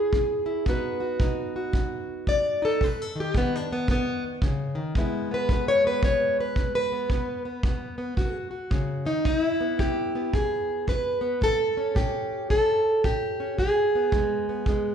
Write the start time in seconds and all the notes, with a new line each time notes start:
Already playing: E4 G#4
0.13 E2, kick
0.46 E4
0.66 B2 B3 D#4 F#4 B4, kick
1.00 F#4
1.20 B2 D#4, kick
1.56 F#4
1.73 B2, kick
2.27 B2 D5, kick
2.62 D#4 A4
2.81 B2 B4, kick
3.02 A4
3.16 D#3
3.20 G4
3.35 B2 B3, kick
3.56 D4
3.71 D#3 B3
3.88 B2 B3, kick
4.42 C#3, kick
4.75 D#3
4.95 E2 G#3 B3 E4, kick
5.31 B3 B4
5.49 E2 B3, kick
5.68 C#5
5.85 B3 B4
6.03 E2 C#5, kick
6.40 B4
6.56 E2, kick
6.75 B4
6.92 B3
7.10 E2 B3, kick
7.45 B3
7.63 E2 B3, kick
7.98 B3
8.17 B2 F#4, kick
8.51 F#4
8.71 C#3, kick
9.05 D#3 D#4
9.25 E2 D#4, kick
9.40 E4
9.60 B3
9.79 E2 G4, kick
10.15 B3
10.33 E2 G#4, kick
10.87 E2 B4, kick
11.21 B3
11.41 A2 A4, kick
11.77 C#4
11.95 A2 G4, kick
12.50 A2 A4, kick
13.04 A2 G4, kick
13.40 C#4
13.58 E2 G#4, kick
13.95 B3
14.12 E2 G#3, kick
14.49 B3
14.66 E2 G#3, kick